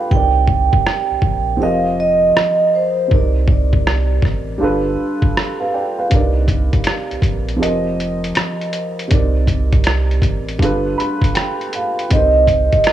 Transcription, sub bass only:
0.12 0.69 C2 loud
1.11 1.16 A#1 soft
1.22 1.58 A#1 medium
1.61 2.32 F1 loud
3.11 4.20 C2 loud
4.23 4.58 A1 medium
4.62 4.96 G1 loud
6.12 6.70 C2 loud
7.11 7.16 A#1 soft
7.22 7.58 A#1 medium
7.61 8.32 F1 loud
9.12 10.20 C2 loud
10.22 10.58 A1 medium
10.60 10.95 G1 loud
12.12 12.69 C2 medium

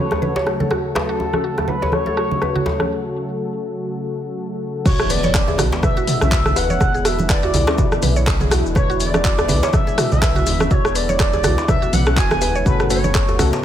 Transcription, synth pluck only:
0.00 0.10 F#4 medium
0.22 0.35 B4 medium
0.36 0.45 C#5 loud
0.60 0.70 A4 medium
0.71 0.83 F#4 loud
0.95 1.08 B4 medium
1.09 1.19 F#4 loud
1.33 1.43 C#4 medium
1.44 1.56 F#4 medium
1.68 1.82 B4 medium
1.82 1.92 C#5 loud
2.07 2.16 A4 medium
2.17 2.30 F#4 loud
2.42 2.54 B4 medium
2.55 2.65 F#4 loud
2.80 2.89 C#4 medium
4.86 4.98 F#4 medium
5.10 5.23 B4 medium
5.24 5.33 C#5 loud
5.48 5.58 G#4 medium
5.59 5.71 F#4 loud
5.83 5.96 B4 medium
5.97 6.06 F#4 loud
6.21 6.31 C#4 medium
6.32 6.44 F#4 medium
6.56 6.69 B4 medium
6.70 6.80 C#5 loud
6.94 7.04 G#4 medium
7.05 7.17 F#4 loud
7.29 7.42 B4 medium
7.43 7.53 F#4 loud
7.68 7.77 C#4 medium
7.78 7.91 F#4 medium
8.03 8.16 B4 medium
8.16 8.26 C#5 loud
8.41 8.50 G#4 medium
8.51 8.64 F#4 loud
8.76 8.88 B4 medium
8.90 8.99 F#4 loud
9.14 9.24 C#4 medium
9.25 9.37 F#4 medium
9.49 9.62 B4 medium
9.63 9.72 C#5 loud
9.87 9.97 G#4 medium
9.98 10.10 F#4 loud
10.22 10.35 B4 medium
10.36 10.45 F#4 loud
10.60 10.70 C#4 medium
10.71 10.83 F#4 medium
10.95 11.08 B4 medium
11.09 11.19 C#5 loud
11.34 11.43 G#4 medium
11.44 11.56 F#4 loud
11.68 11.81 B4 medium
11.82 11.92 F#4 loud
12.07 12.16 C#4 medium
12.17 12.30 F#4 medium
12.42 12.55 B4 medium
12.55 12.65 C#5 loud
12.66 12.78 F#4 medium
12.90 13.04 B4 medium
13.04 13.14 C#5 loud
13.29 13.38 A4 medium
13.39 13.52 F#4 loud

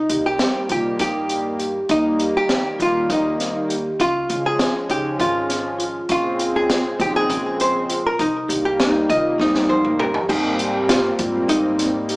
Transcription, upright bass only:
0.09 0.35 C2 medium
0.70 0.96 C3 medium
1.00 1.77 G2 medium
1.89 2.67 D#2 medium
2.80 3.05 D#2 medium
3.10 3.87 D#2 medium
4.00 4.25 C#2 medium
4.30 4.55 C#2 medium
4.90 5.15 C#3 medium
5.20 5.97 G#1 medium
6.10 6.87 A#1 medium
7.00 7.25 A#1 medium
7.30 8.07 A#1 medium
8.19 8.45 C2 medium
8.49 8.75 C2 medium
9.10 9.35 C3 medium
9.40 10.17 G2 medium
10.29 11.06 G#2 medium
11.19 11.45 G#2 medium
11.49 12.16 G#2 medium

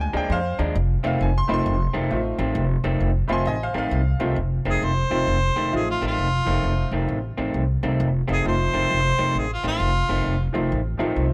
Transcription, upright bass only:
0.14 0.27 D2 medium
0.30 0.53 F2 medium
0.59 0.72 D#2 loud
0.75 0.98 F1 loud
1.04 1.17 F1 loud
1.21 1.43 F1 medium
1.49 1.62 F1 medium
1.66 1.89 F1 loud
1.94 2.08 F1 medium
2.11 2.34 A1 medium
2.39 2.52 A1 loud
2.55 2.78 F1 loud
2.84 2.97 F1 medium
3.00 3.24 F1 medium
3.29 3.43 F1 medium
3.46 3.69 A1 loud
3.74 3.88 A1 medium
3.91 4.14 C2 loud
4.20 4.33 C2 loud
4.36 4.59 F1 medium
4.65 4.79 F1 medium
4.82 5.05 F1 medium
5.11 5.24 F1 medium
5.27 5.50 F1 medium
5.56 5.69 F1 medium
5.73 5.96 A1 medium
6.02 6.15 A1 medium
6.18 6.41 F1 medium
6.47 6.60 F1 medium
6.63 6.86 F1 medium
6.91 7.05 F1 medium
7.09 7.31 A1 medium
7.38 7.51 A1 medium
7.54 7.77 C2 medium
7.83 7.96 C2 medium
8.00 8.23 F1 loud
8.29 8.42 F1 medium
8.45 8.68 F1 medium
8.74 8.87 F1 medium
8.91 9.13 F1 medium
9.19 9.32 F1 medium
9.35 9.58 A1 medium
9.63 9.77 A1 medium
9.80 10.03 F1 medium
10.09 10.22 F1 medium
10.26 10.49 F1 medium
10.55 10.68 F1 medium
10.72 10.94 A1 medium
11.00 11.13 A1 medium
11.16 11.33 C2 medium

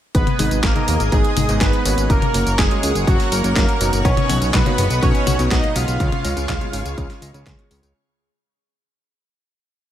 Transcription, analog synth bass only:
0.15 0.25 G#1 loud
0.39 0.49 G#1 medium
0.51 0.61 G#1 medium
0.64 0.73 G#1 loud
0.88 0.98 D#2 loud
1.00 1.10 G#1 medium
1.12 1.22 G#1 loud
1.37 1.47 G#1 loud
1.49 1.59 G#1 medium
1.61 1.71 G#1 loud
1.85 1.95 G#1 medium
1.98 2.08 G#1 medium
2.10 2.20 F#1 loud
2.34 2.44 F#1 medium
2.46 2.56 F#1 medium
2.59 2.69 F#1 loud
2.83 2.93 C#2 medium
2.95 3.05 F#1 medium
3.07 3.17 F#1 loud
3.32 3.42 F#1 medium
3.44 3.54 F#1 medium
3.56 3.66 F#1 loud
3.81 3.91 F#1 medium
3.93 4.03 F#1 medium
4.05 4.15 B1 loud
4.29 4.39 B1 loud
4.41 4.51 B1 medium
4.54 4.64 B1 loud
4.78 4.88 F#1 loud
4.90 5.00 B1 medium
5.03 5.13 B1 loud
5.27 5.37 B1 medium
5.39 5.49 B1 medium
5.51 5.61 B1 loud
5.76 5.86 B1 medium
5.88 5.98 B1 medium
6.00 6.10 C#2 loud
6.24 6.34 C#2 medium
6.37 6.47 C#2 medium
6.49 6.59 C#2 loud
6.73 6.83 G#1 loud
6.85 6.95 C#2 medium
6.98 7.08 C#2 loud
7.22 7.32 C#2 medium
7.34 7.44 C#2 medium
7.46 7.56 C#2 loud
7.71 7.81 C#2 loud
7.83 7.93 C#2 medium

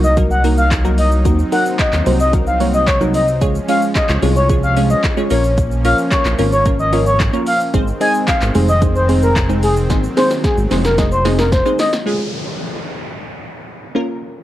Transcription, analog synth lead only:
0.04 0.16 D#5 medium
0.31 0.43 F#5 medium
0.58 0.70 F5 medium
0.98 1.10 D#5 medium
1.52 1.64 F#5 medium
1.79 1.91 D#5 medium
2.20 2.32 D#5 medium
2.47 2.59 F5 medium
2.74 2.86 D#5 medium
2.88 2.99 C#5 medium
3.15 3.27 D#5 medium
3.69 3.81 F5 medium
3.96 4.08 D#5 medium
4.36 4.48 C#5 medium
4.63 4.75 F5 medium
4.90 5.02 D#5 medium
5.31 5.43 C#5 medium
5.85 5.97 F5 medium
6.12 6.24 C#5 medium
6.52 6.64 C#5 medium
6.79 6.91 D#5 medium
7.06 7.18 C#5 medium
7.47 7.59 F5 medium
8.01 8.13 G#5 medium
8.28 8.40 F5 medium
8.69 8.81 D#5 medium
8.96 9.08 C5 medium
9.23 9.35 A#4 medium
9.63 9.75 G#4 medium
10.17 10.29 C5 medium
10.44 10.56 G#4 medium
10.85 10.97 A#4 medium
11.12 11.24 C5 medium
11.39 11.51 A#4 medium
11.52 11.64 C5 medium
11.79 11.91 D#5 medium

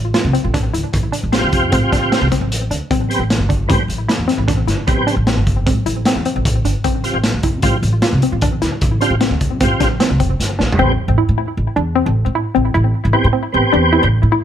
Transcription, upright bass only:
0.00 0.12 A1 medium
0.25 0.33 C2 medium
0.45 0.69 A1 medium
0.74 0.82 D2 medium
0.94 1.10 A1 medium
1.23 1.40 A1 medium
1.43 1.73 D2 medium
1.73 1.81 A2 medium
1.92 2.09 A1 medium
2.21 2.30 C2 medium
2.41 2.66 A1 medium
2.70 2.79 D2 medium
2.91 3.07 A1 medium
3.19 3.36 A1 medium
3.38 3.71 G1 medium
3.70 3.78 A2 medium
3.88 4.05 A1 medium
4.18 4.27 E2 medium
4.38 4.63 A1 medium
4.67 4.76 G1 medium
4.88 5.04 A1 medium
5.16 5.33 A1 medium
5.37 5.68 G1 medium
5.67 5.75 A2 medium
5.86 6.03 A1 medium
6.15 6.24 E2 medium
6.36 6.61 A1 medium
6.64 6.73 G1 medium
6.84 7.01 A1 medium
7.14 7.30 A1 medium
7.34 7.63 D2 medium
7.63 7.72 A2 medium
7.82 7.99 A1 medium
8.13 8.21 C2 medium
8.32 8.57 A1 medium
8.62 8.70 D2 medium
8.82 8.98 A1 medium
9.10 9.27 A1 medium
9.30 9.61 D2 medium
9.61 9.69 A2 medium
9.81 9.97 A1 medium
10.10 10.18 C2 medium
10.20 10.37 F1 medium
10.40 10.57 G1 medium
10.59 10.77 A1 medium
10.79 10.95 A1 medium
11.08 11.16 A1 medium
11.29 11.45 A2 medium
11.57 11.65 A1 medium
11.76 12.01 E2 medium
12.06 12.23 A1 medium
12.26 12.42 A2 medium
12.56 12.72 A1 medium
12.75 12.91 A1 medium
13.05 13.13 A1 medium
13.24 13.41 A2 medium
13.54 13.62 A1 medium
13.73 13.98 E2 medium
14.03 14.19 A1 medium
14.23 14.39 A2 medium

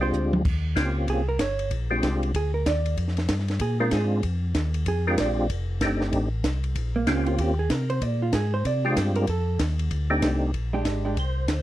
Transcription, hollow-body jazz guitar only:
0.03 0.31 C5 medium
1.10 1.28 G#4 medium
1.29 1.40 A#4 medium
1.41 1.69 C#5 medium
2.36 2.54 G#4 medium
2.54 2.65 A#4 medium
2.67 2.96 D5 loud
3.61 3.80 G#4 medium
3.80 3.92 A#4 medium
3.93 4.22 G#4 medium
4.88 5.06 G#4 medium
5.07 5.18 A#4 medium
5.20 5.48 D5 medium
6.96 7.08 A#3 medium
7.08 7.27 C#4 medium
7.27 7.39 F4 medium
7.40 7.59 G4 medium
7.59 7.72 G#4 medium
7.72 7.90 A#4 medium
7.90 8.03 C5 medium
8.03 8.21 D5 medium
8.22 8.33 F4 medium
8.35 8.53 G#4 medium
8.54 8.65 C5 loud
8.67 8.85 D5 medium
8.85 8.92 G4 loud
9.16 9.28 A#4 medium
9.30 9.58 A4 medium
10.73 11.03 G#3 medium
10.73 11.03 D4 medium
10.73 11.03 G4 medium
11.05 11.15 G#3 medium
11.05 11.16 D4 medium
11.05 11.16 G4 medium

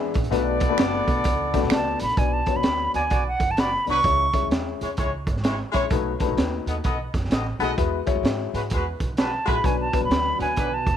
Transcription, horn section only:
0.00 0.12 B3 medium
0.00 0.11 G#4 medium
0.00 0.11 E5 medium
0.31 1.97 B3 medium
0.31 1.97 A4 medium
0.31 1.97 D5 medium
2.95 3.01 B3 medium
2.95 3.02 F#4 medium
2.95 3.02 D5 medium
3.11 3.23 B3 medium
3.11 3.24 F#4 medium
3.11 3.23 D5 medium
3.58 3.71 B3 medium
3.58 3.71 F#4 medium
3.58 3.71 D5 medium
3.89 3.99 F#3 medium
3.89 3.99 D4 medium
3.89 4.00 B4 medium
4.82 4.89 G#3 medium
4.82 4.89 E4 medium
4.82 4.89 C#5 medium
4.98 5.11 G#3 medium
4.98 5.10 E4 medium
4.98 5.10 C#5 medium
5.43 5.56 G#3 medium
5.43 5.56 E4 medium
5.43 5.56 C#5 medium
5.72 5.84 G#3 medium
5.72 5.83 E4 medium
5.72 5.84 C#5 loud
6.68 6.75 B3 medium
6.68 6.75 A4 medium
6.68 6.75 D#5 medium
6.84 6.97 B3 medium
6.84 6.97 A4 medium
6.84 6.97 D#5 medium
7.31 7.43 B3 medium
7.31 7.44 A4 medium
7.31 7.44 D#5 medium
7.61 7.71 B3 medium
7.61 7.72 A4 medium
7.61 7.72 D#5 medium
8.54 8.62 G#3 medium
8.54 8.61 F#4 medium
8.54 8.61 B4 medium
8.72 8.84 G#3 medium
8.72 8.84 F#4 medium
8.72 8.84 B4 medium
9.18 9.30 G#3 medium
9.18 9.30 F#4 medium
9.18 9.30 B4 medium
9.46 9.57 G#3 medium
9.46 9.57 F#4 medium
9.46 9.57 B4 medium
10.39 10.47 F#3 medium
10.39 10.47 D4 medium
10.39 10.47 B4 medium
10.57 10.70 F#3 medium
10.57 10.70 D4 medium
10.57 10.70 B4 medium

